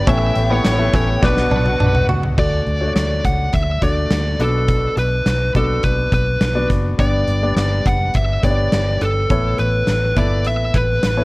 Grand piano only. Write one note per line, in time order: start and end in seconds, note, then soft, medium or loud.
0.07 0.90 A2 medium
0.07 0.48 B3 medium
0.07 0.48 E4 medium
0.07 0.48 A4 medium
0.07 0.48 C#5 medium
0.50 0.77 B3 medium
0.50 0.77 E4 medium
0.50 0.78 A4 medium
0.50 0.78 C#5 medium
0.78 1.21 B3 medium
0.78 1.22 E4 medium
0.78 1.22 A4 medium
0.78 1.22 E5 medium
1.22 2.05 B2 medium
1.22 2.31 B3 medium
1.22 2.32 D4 medium
1.22 2.32 F#4 medium
1.22 2.32 D5 medium
2.38 3.20 D3 soft
2.38 2.79 A3 medium
2.38 2.79 D4 soft
2.38 2.79 F#4 medium
2.38 2.79 D5 medium
2.80 3.76 A3 medium
2.80 3.76 D4 medium
2.80 3.77 F#4 medium
2.80 2.88 C#5 medium
2.88 3.80 D5 medium
3.81 4.39 A3 medium
3.81 4.38 D4 medium
3.81 4.39 F#4 soft
3.81 4.39 D5 medium
4.39 5.22 B2 soft
4.39 5.49 B3 medium
4.39 5.49 D4 medium
4.39 5.49 F#4 medium
4.39 5.49 D5 medium
5.55 6.51 B3 medium
5.55 6.51 D4 medium
5.55 6.51 F#4 medium
5.55 6.51 D5 medium
6.55 6.96 B3 medium
6.55 6.96 D4 medium
6.55 6.97 F#4 medium
6.55 6.97 D5 medium
6.99 7.82 G2 soft
6.99 7.40 B3 medium
6.99 7.40 D4 medium
6.99 7.40 G4 medium
6.99 7.40 D5 medium
7.43 8.38 B3 medium
7.43 8.38 D4 medium
7.43 8.38 G4 medium
7.43 8.38 D5 medium
8.43 9.25 B3 medium
8.43 9.25 D4 medium
8.43 9.26 G4 medium
8.43 8.50 C#5 soft
8.50 9.29 D5 medium
9.30 10.13 A2 soft
9.30 10.12 B3 medium
9.30 10.12 E4 medium
9.30 10.12 A4 medium
9.30 10.12 C#5 medium
10.16 11.12 B3 medium
10.16 11.12 E4 medium
10.16 11.12 A4 medium
10.16 11.12 E5 medium
11.17 11.24 B3 medium
11.17 11.24 E4 medium
11.17 11.24 A4 soft
11.17 11.24 C#5 medium